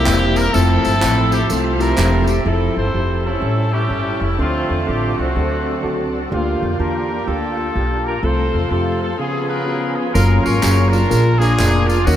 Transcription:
Already playing: C3 G3 A#3 C4 E4 G4 A#4
0.04 E1 A#3 C4 E4 G4 B4, clap, tambourine
0.12 C5
0.36 A#4, tambourine
0.52 F1 F3 A3 C4 E4 A4 C5 E5, tambourine
0.85 G1, tambourine
1.01 A1 F3 A3 C4 E4 A4, clap, tambourine
1.32 G4, tambourine
1.49 C2 A3 C4 E4 F4 A4, tambourine
1.79 A3 C4 E4 F4 G4 A#4, tambourine
1.97 E1 F3 A3 C4 E4 G4, clap, tambourine
2.27 G4, tambourine
2.45 F1 F3 C4 E4 G#4 A4 C5 E5 A5
2.53 A4
2.77 G1 E4 A4 C5
2.93 F1 F3 C4 E4 G4
3.25 C#4 E4 A4
3.40 A1 A2 G3 C#4 E4 G4 A4 C#5 G5
3.72 C#4 E4 G4
3.88 G1 C#4 E4 G4 A4
4.21 F1 E4
4.38 D2 D3 F3 A3 C4 D4 F4 A4 C5 D5 F5
4.70 E2
4.86 A1 C4 D4 F4 G4 A4
5.16 C2 A3 C4 F#4
5.35 D2 D3 F#3 C4 D4 F#4 G#4 A4 F#5
5.42 A4
5.83 C#2 C4 D4 F#4 A4
6.30 D2 D3 A3 A#3 D4 F4 G4 F5 G5
6.36 A#3
6.62 F2
6.79 E2 A#3 D4 F4 G4 A#4 A5
7.26 D2 A#3 D4 F4 G4 A4
7.34 A4
7.75 B1 A#3 D4 F4 G4
8.06 A#4
8.22 C2 C3 F3 A3 C4 F4 A4 C5 F5 A5 C6
8.54 E2
8.70 F2 A3 C4 F4 G4 A4
9.01 A4
9.19 C#3 F3 B3 C#4 F4 G#4 C#5 G#5 B5
9.48 F4 G#4 A#4 B4
9.66 B3 C#4 F4 F#4 A#4
9.73 G#4
9.95 G#4
10.13 F#1 F#3 A#3 C#4 F4 A4 A#4, tambourine
10.22 A#4
10.43 G#1 F4 A#4 C#5, tambourine
10.62 F#1 F#3 A#3 C#4 F4 G#4, clap, tambourine
10.89 D4 F4 A#4, tambourine
11.09 A#1 A#2 A#3 D4 F4 G#4 A#4, tambourine
11.39 A#3 D4 F4 G#4 A#4, tambourine
11.59 F1 A#3 D4 F4 G#4 A#4, clap, tambourine
11.87 F4, tambourine
12.04 D#2 D#3 A#3 C#4 D#4 F#4 A#4, tambourine

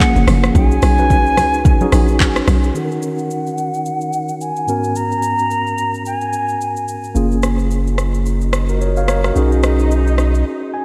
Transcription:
Already playing: F3 A#3 C#4 F4 G#4 F#5
0.00 kick, clap, high conga, shaker
0.16 F#1, shaker
0.27 F#1, cross-stick, open hi-hat, high conga, low conga, shaker
0.43 cross-stick, shaker
0.55 B1 C#4 D#4 F#4 G#4 G#5, kick, shaker
0.71 shaker
0.82 B1, cross-stick, open hi-hat, shaker
0.98 C#4 D#4 F#4 B4, high conga, shaker
1.10 kick, low conga, shaker
1.26 shaker
1.37 C#2, cross-stick, open hi-hat, high conga, low conga, shaker
1.54 shaker
1.65 kick, low conga, shaker
1.81 C#4 D#4 F#4 G#4, high conga, shaker
1.92 A#1, cross-stick, open hi-hat, shaker
2.08 shaker
2.20 kick, clap, high conga, shaker
2.36 cross-stick, shaker
2.48 B1, cross-stick, open hi-hat, high conga, low conga, shaker
2.63 shaker
2.74 D#3 C#4 D#4 F#4 A4 F#5, shaker
2.83 A#4
2.91 shaker
3.02 shaker
3.18 shaker
3.30 shaker
3.47 shaker
3.58 shaker
3.74 shaker
3.86 shaker
4.01 shaker
4.13 shaker
4.28 shaker
4.41 G#5, shaker
4.56 shaker
4.67 G#2 B3 C#4 F#4 A#4, shaker
4.84 shaker
4.95 A#5, shaker
5.12 shaker
5.23 shaker
5.39 shaker
5.51 shaker
5.67 shaker
5.78 shaker
5.94 shaker
6.06 G#5, shaker
6.21 shaker
6.33 shaker
6.49 shaker
6.61 shaker
6.76 shaker
6.88 shaker
7.04 shaker
7.15 F#1 A#3 C#4 F4 G#4, swell, shaker
7.32 shaker
7.43 cross-stick, shaker
7.59 shaker
7.71 shaker
7.87 shaker
7.98 cross-stick, shaker
8.14 shaker
8.26 shaker
8.41 shaker
8.53 cross-stick, shaker
8.69 F#4 A#4, shaker
8.81 A#4 C#5, shaker
8.97 C#5 F5, shaker
9.08 A#4 C#5, cross-stick, shaker
9.24 F#4 A#4, cross-stick, shaker
9.35 B1 C#4 D#4 F#4 G#4, shaker
9.52 shaker
9.63 cross-stick, shaker
9.79 shaker
9.91 shaker
10.07 shaker
10.18 cross-stick, shaker
10.35 shaker
10.74 G#5

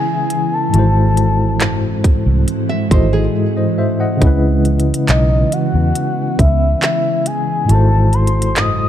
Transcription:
Already playing: C#3 E3 G#3 B3 C#4 E4 B4 G#5
0.30 closed hi-hat
0.54 A5
0.69 G#2 E3 G#3 E4
0.73 G#1 G#3 C4 F#4 A4, closed hi-hat
0.79 C5
1.17 closed hi-hat
1.60 F#1, clap, closed hi-hat
2.04 kick, closed hi-hat
2.26 C2
2.48 closed hi-hat
2.69 E5
2.89 G#1 G#2 G#3 E4 F#4 A4 C5, kick, closed hi-hat
2.94 D#5
3.13 G#4
3.57 C5 D#5
3.78 C5 E5
4.00 D#5 F#5
4.17 C#3 G#3
4.21 C#2 E3 B3 C#4 E4, kick, closed hi-hat
4.27 B4
4.65 closed hi-hat
4.80 closed hi-hat
4.94 closed hi-hat
5.08 B1 D#5, clap, closed hi-hat
5.52 F#5, closed hi-hat
5.74 E2
5.95 closed hi-hat
6.39 C#2 E5, kick, closed hi-hat
6.82 E5, clap, closed hi-hat
7.26 G#5, closed hi-hat
7.65 G#2 G#3 E4
7.69 G#1 C3 F#3 F#4 A4 A5, closed hi-hat
7.74 C5
8.13 C6, closed hi-hat
8.27 closed hi-hat
8.42 closed hi-hat
8.56 F#1 D#6, clap, closed hi-hat

